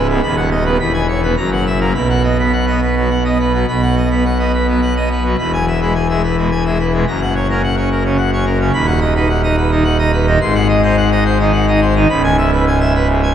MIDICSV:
0, 0, Header, 1, 2, 480
1, 0, Start_track
1, 0, Key_signature, 5, "major"
1, 0, Tempo, 574713
1, 186, Time_signature, 3, 2, 24, 8
1, 3550, Tempo, 561272
1, 11328, End_track
2, 0, Start_track
2, 0, Title_t, "Pipe organ"
2, 0, Program_c, 0, 19
2, 0, Note_on_c, 0, 25, 94
2, 0, Note_on_c, 0, 37, 99
2, 81, Note_on_c, 0, 44, 83
2, 81, Note_on_c, 0, 59, 75
2, 159, Note_off_c, 0, 37, 0
2, 160, Note_off_c, 0, 25, 0
2, 176, Note_off_c, 0, 44, 0
2, 176, Note_off_c, 0, 59, 0
2, 191, Note_on_c, 0, 39, 94
2, 192, Note_on_c, 0, 83, 120
2, 194, Note_on_c, 0, 27, 92
2, 295, Note_off_c, 0, 83, 0
2, 308, Note_on_c, 0, 78, 86
2, 412, Note_off_c, 0, 78, 0
2, 431, Note_on_c, 0, 75, 82
2, 533, Note_off_c, 0, 75, 0
2, 547, Note_on_c, 0, 71, 75
2, 548, Note_on_c, 0, 59, 77
2, 645, Note_off_c, 0, 71, 0
2, 646, Note_off_c, 0, 59, 0
2, 648, Note_off_c, 0, 39, 0
2, 649, Note_off_c, 0, 27, 0
2, 667, Note_on_c, 0, 28, 87
2, 667, Note_on_c, 0, 83, 110
2, 668, Note_on_c, 0, 40, 92
2, 770, Note_off_c, 0, 83, 0
2, 781, Note_on_c, 0, 80, 76
2, 887, Note_off_c, 0, 80, 0
2, 906, Note_on_c, 0, 73, 73
2, 1010, Note_off_c, 0, 73, 0
2, 1029, Note_on_c, 0, 71, 72
2, 1031, Note_on_c, 0, 59, 73
2, 1127, Note_off_c, 0, 71, 0
2, 1128, Note_off_c, 0, 59, 0
2, 1129, Note_off_c, 0, 28, 0
2, 1129, Note_off_c, 0, 40, 0
2, 1144, Note_on_c, 0, 30, 91
2, 1147, Note_on_c, 0, 42, 89
2, 1147, Note_on_c, 0, 82, 106
2, 1252, Note_off_c, 0, 82, 0
2, 1273, Note_on_c, 0, 78, 73
2, 1376, Note_off_c, 0, 78, 0
2, 1389, Note_on_c, 0, 76, 76
2, 1495, Note_off_c, 0, 76, 0
2, 1507, Note_on_c, 0, 70, 66
2, 1510, Note_on_c, 0, 58, 73
2, 1609, Note_off_c, 0, 70, 0
2, 1611, Note_off_c, 0, 58, 0
2, 1614, Note_off_c, 0, 30, 0
2, 1616, Note_off_c, 0, 42, 0
2, 1627, Note_on_c, 0, 47, 84
2, 1628, Note_on_c, 0, 83, 109
2, 1629, Note_on_c, 0, 35, 79
2, 1736, Note_off_c, 0, 83, 0
2, 1750, Note_on_c, 0, 78, 80
2, 1857, Note_off_c, 0, 78, 0
2, 1870, Note_on_c, 0, 75, 78
2, 1978, Note_off_c, 0, 75, 0
2, 1998, Note_on_c, 0, 71, 72
2, 2001, Note_on_c, 0, 59, 66
2, 2103, Note_off_c, 0, 71, 0
2, 2105, Note_off_c, 0, 59, 0
2, 2108, Note_on_c, 0, 78, 71
2, 2218, Note_off_c, 0, 78, 0
2, 2234, Note_on_c, 0, 59, 67
2, 2234, Note_on_c, 0, 75, 69
2, 2341, Note_off_c, 0, 59, 0
2, 2341, Note_off_c, 0, 75, 0
2, 2356, Note_on_c, 0, 71, 60
2, 2462, Note_off_c, 0, 71, 0
2, 2475, Note_on_c, 0, 59, 69
2, 2479, Note_on_c, 0, 54, 67
2, 2581, Note_off_c, 0, 59, 0
2, 2583, Note_off_c, 0, 54, 0
2, 2592, Note_on_c, 0, 78, 68
2, 2700, Note_off_c, 0, 78, 0
2, 2714, Note_on_c, 0, 75, 58
2, 2716, Note_on_c, 0, 59, 56
2, 2821, Note_off_c, 0, 75, 0
2, 2823, Note_off_c, 0, 59, 0
2, 2837, Note_on_c, 0, 71, 71
2, 2943, Note_off_c, 0, 71, 0
2, 2954, Note_on_c, 0, 54, 69
2, 2954, Note_on_c, 0, 59, 66
2, 3041, Note_off_c, 0, 47, 0
2, 3042, Note_off_c, 0, 35, 0
2, 3056, Note_off_c, 0, 54, 0
2, 3056, Note_off_c, 0, 59, 0
2, 3077, Note_on_c, 0, 83, 90
2, 3078, Note_on_c, 0, 47, 84
2, 3079, Note_on_c, 0, 35, 84
2, 3182, Note_off_c, 0, 83, 0
2, 3192, Note_on_c, 0, 78, 75
2, 3299, Note_off_c, 0, 78, 0
2, 3308, Note_on_c, 0, 75, 69
2, 3416, Note_off_c, 0, 75, 0
2, 3434, Note_on_c, 0, 59, 64
2, 3435, Note_on_c, 0, 71, 66
2, 3539, Note_off_c, 0, 59, 0
2, 3540, Note_off_c, 0, 71, 0
2, 3552, Note_on_c, 0, 78, 70
2, 3659, Note_off_c, 0, 78, 0
2, 3671, Note_on_c, 0, 59, 62
2, 3671, Note_on_c, 0, 75, 68
2, 3779, Note_off_c, 0, 59, 0
2, 3779, Note_off_c, 0, 75, 0
2, 3797, Note_on_c, 0, 71, 61
2, 3903, Note_off_c, 0, 71, 0
2, 3918, Note_on_c, 0, 54, 64
2, 3920, Note_on_c, 0, 59, 65
2, 4023, Note_off_c, 0, 54, 0
2, 4025, Note_off_c, 0, 59, 0
2, 4038, Note_on_c, 0, 78, 73
2, 4143, Note_off_c, 0, 78, 0
2, 4163, Note_on_c, 0, 59, 57
2, 4163, Note_on_c, 0, 75, 66
2, 4266, Note_off_c, 0, 75, 0
2, 4267, Note_off_c, 0, 59, 0
2, 4283, Note_on_c, 0, 71, 70
2, 4386, Note_off_c, 0, 71, 0
2, 4402, Note_on_c, 0, 59, 64
2, 4403, Note_on_c, 0, 54, 66
2, 4483, Note_off_c, 0, 35, 0
2, 4483, Note_off_c, 0, 47, 0
2, 4501, Note_off_c, 0, 59, 0
2, 4502, Note_off_c, 0, 54, 0
2, 4524, Note_on_c, 0, 40, 74
2, 4525, Note_on_c, 0, 83, 98
2, 4529, Note_on_c, 0, 28, 79
2, 4629, Note_off_c, 0, 83, 0
2, 4645, Note_on_c, 0, 80, 71
2, 4749, Note_off_c, 0, 80, 0
2, 4767, Note_on_c, 0, 76, 75
2, 4870, Note_off_c, 0, 76, 0
2, 4886, Note_on_c, 0, 56, 65
2, 4886, Note_on_c, 0, 71, 64
2, 4989, Note_off_c, 0, 71, 0
2, 4990, Note_off_c, 0, 56, 0
2, 5006, Note_on_c, 0, 80, 70
2, 5110, Note_off_c, 0, 80, 0
2, 5128, Note_on_c, 0, 56, 64
2, 5128, Note_on_c, 0, 76, 63
2, 5231, Note_off_c, 0, 56, 0
2, 5231, Note_off_c, 0, 76, 0
2, 5246, Note_on_c, 0, 71, 62
2, 5350, Note_off_c, 0, 71, 0
2, 5368, Note_on_c, 0, 56, 62
2, 5369, Note_on_c, 0, 47, 67
2, 5472, Note_off_c, 0, 47, 0
2, 5472, Note_off_c, 0, 56, 0
2, 5486, Note_on_c, 0, 80, 69
2, 5590, Note_off_c, 0, 80, 0
2, 5608, Note_on_c, 0, 76, 61
2, 5610, Note_on_c, 0, 56, 62
2, 5712, Note_off_c, 0, 76, 0
2, 5713, Note_off_c, 0, 56, 0
2, 5728, Note_on_c, 0, 71, 74
2, 5832, Note_off_c, 0, 71, 0
2, 5845, Note_on_c, 0, 56, 64
2, 5846, Note_on_c, 0, 47, 68
2, 5930, Note_off_c, 0, 40, 0
2, 5933, Note_off_c, 0, 28, 0
2, 5945, Note_off_c, 0, 47, 0
2, 5945, Note_off_c, 0, 56, 0
2, 5964, Note_on_c, 0, 42, 84
2, 5967, Note_on_c, 0, 82, 96
2, 5969, Note_on_c, 0, 30, 86
2, 6071, Note_off_c, 0, 82, 0
2, 6089, Note_on_c, 0, 78, 75
2, 6192, Note_off_c, 0, 78, 0
2, 6200, Note_on_c, 0, 73, 71
2, 6307, Note_off_c, 0, 73, 0
2, 6327, Note_on_c, 0, 61, 66
2, 6327, Note_on_c, 0, 70, 69
2, 6430, Note_off_c, 0, 61, 0
2, 6430, Note_off_c, 0, 70, 0
2, 6443, Note_on_c, 0, 78, 75
2, 6547, Note_off_c, 0, 78, 0
2, 6560, Note_on_c, 0, 61, 65
2, 6560, Note_on_c, 0, 73, 69
2, 6664, Note_off_c, 0, 61, 0
2, 6664, Note_off_c, 0, 73, 0
2, 6681, Note_on_c, 0, 70, 69
2, 6784, Note_off_c, 0, 70, 0
2, 6798, Note_on_c, 0, 49, 68
2, 6799, Note_on_c, 0, 61, 69
2, 6902, Note_off_c, 0, 49, 0
2, 6902, Note_off_c, 0, 61, 0
2, 6911, Note_on_c, 0, 78, 76
2, 7018, Note_off_c, 0, 78, 0
2, 7035, Note_on_c, 0, 61, 60
2, 7037, Note_on_c, 0, 73, 66
2, 7139, Note_off_c, 0, 61, 0
2, 7140, Note_off_c, 0, 73, 0
2, 7146, Note_on_c, 0, 70, 81
2, 7254, Note_off_c, 0, 70, 0
2, 7270, Note_on_c, 0, 49, 73
2, 7274, Note_on_c, 0, 61, 69
2, 7355, Note_off_c, 0, 42, 0
2, 7358, Note_off_c, 0, 30, 0
2, 7371, Note_off_c, 0, 49, 0
2, 7373, Note_off_c, 0, 61, 0
2, 7383, Note_on_c, 0, 27, 88
2, 7384, Note_on_c, 0, 39, 93
2, 7385, Note_on_c, 0, 83, 110
2, 7492, Note_off_c, 0, 83, 0
2, 7498, Note_on_c, 0, 78, 74
2, 7608, Note_off_c, 0, 78, 0
2, 7618, Note_on_c, 0, 75, 74
2, 7727, Note_off_c, 0, 75, 0
2, 7745, Note_on_c, 0, 71, 72
2, 7746, Note_on_c, 0, 63, 72
2, 7851, Note_off_c, 0, 63, 0
2, 7851, Note_off_c, 0, 71, 0
2, 7861, Note_on_c, 0, 78, 78
2, 7968, Note_off_c, 0, 78, 0
2, 7982, Note_on_c, 0, 63, 71
2, 7984, Note_on_c, 0, 75, 82
2, 8089, Note_off_c, 0, 63, 0
2, 8090, Note_off_c, 0, 75, 0
2, 8107, Note_on_c, 0, 71, 73
2, 8211, Note_off_c, 0, 71, 0
2, 8219, Note_on_c, 0, 51, 75
2, 8219, Note_on_c, 0, 63, 79
2, 8326, Note_off_c, 0, 51, 0
2, 8327, Note_off_c, 0, 63, 0
2, 8335, Note_on_c, 0, 78, 82
2, 8444, Note_off_c, 0, 78, 0
2, 8456, Note_on_c, 0, 75, 77
2, 8458, Note_on_c, 0, 63, 65
2, 8564, Note_off_c, 0, 75, 0
2, 8566, Note_off_c, 0, 63, 0
2, 8578, Note_on_c, 0, 71, 77
2, 8686, Note_off_c, 0, 71, 0
2, 8698, Note_on_c, 0, 51, 84
2, 8698, Note_on_c, 0, 63, 76
2, 8782, Note_off_c, 0, 27, 0
2, 8783, Note_off_c, 0, 39, 0
2, 8800, Note_off_c, 0, 51, 0
2, 8800, Note_off_c, 0, 63, 0
2, 8818, Note_on_c, 0, 32, 101
2, 8819, Note_on_c, 0, 84, 127
2, 8820, Note_on_c, 0, 44, 93
2, 8926, Note_off_c, 0, 84, 0
2, 8934, Note_on_c, 0, 78, 84
2, 9043, Note_off_c, 0, 78, 0
2, 9055, Note_on_c, 0, 75, 88
2, 9164, Note_off_c, 0, 75, 0
2, 9177, Note_on_c, 0, 63, 82
2, 9179, Note_on_c, 0, 72, 84
2, 9285, Note_off_c, 0, 63, 0
2, 9286, Note_off_c, 0, 72, 0
2, 9300, Note_on_c, 0, 78, 90
2, 9406, Note_off_c, 0, 78, 0
2, 9420, Note_on_c, 0, 63, 75
2, 9420, Note_on_c, 0, 75, 82
2, 9526, Note_off_c, 0, 63, 0
2, 9526, Note_off_c, 0, 75, 0
2, 9537, Note_on_c, 0, 72, 76
2, 9644, Note_off_c, 0, 72, 0
2, 9659, Note_on_c, 0, 63, 84
2, 9660, Note_on_c, 0, 51, 92
2, 9765, Note_off_c, 0, 63, 0
2, 9766, Note_off_c, 0, 51, 0
2, 9775, Note_on_c, 0, 78, 89
2, 9883, Note_off_c, 0, 78, 0
2, 9902, Note_on_c, 0, 63, 75
2, 9903, Note_on_c, 0, 75, 85
2, 10007, Note_off_c, 0, 63, 0
2, 10008, Note_off_c, 0, 75, 0
2, 10017, Note_on_c, 0, 72, 92
2, 10125, Note_off_c, 0, 72, 0
2, 10139, Note_on_c, 0, 51, 89
2, 10143, Note_on_c, 0, 63, 84
2, 10224, Note_off_c, 0, 32, 0
2, 10225, Note_off_c, 0, 44, 0
2, 10241, Note_off_c, 0, 51, 0
2, 10244, Note_off_c, 0, 63, 0
2, 10256, Note_on_c, 0, 37, 107
2, 10257, Note_on_c, 0, 83, 127
2, 10258, Note_on_c, 0, 25, 105
2, 10366, Note_off_c, 0, 83, 0
2, 10381, Note_on_c, 0, 80, 99
2, 10488, Note_off_c, 0, 80, 0
2, 10501, Note_on_c, 0, 76, 88
2, 10608, Note_off_c, 0, 76, 0
2, 10627, Note_on_c, 0, 71, 93
2, 10731, Note_off_c, 0, 71, 0
2, 10752, Note_on_c, 0, 80, 91
2, 10855, Note_off_c, 0, 80, 0
2, 10865, Note_on_c, 0, 76, 88
2, 10972, Note_off_c, 0, 76, 0
2, 10993, Note_on_c, 0, 71, 84
2, 11097, Note_off_c, 0, 71, 0
2, 11107, Note_on_c, 0, 44, 90
2, 11214, Note_off_c, 0, 44, 0
2, 11229, Note_on_c, 0, 80, 88
2, 11328, Note_off_c, 0, 25, 0
2, 11328, Note_off_c, 0, 37, 0
2, 11328, Note_off_c, 0, 80, 0
2, 11328, End_track
0, 0, End_of_file